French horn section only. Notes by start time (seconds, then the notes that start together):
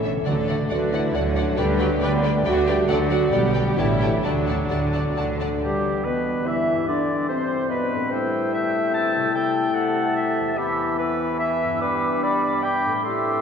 0.26 A3
0.71 F#3
0.93 E3
1.16 F#3
1.60 G3
2.03 B3
2.22 A3
2.43 F#3
2.66 G3
2.88 A3
3.08 F#3
3.32 G3
3.76 E3
4.24 D3
5.63 G3
6.05 B3
6.46 E4
6.87 D4
7.29 C4
7.69 B3
8.11 G3 E4
9.33 A3
10.56 B3 E4
11.80 D4
13.05 C4 E4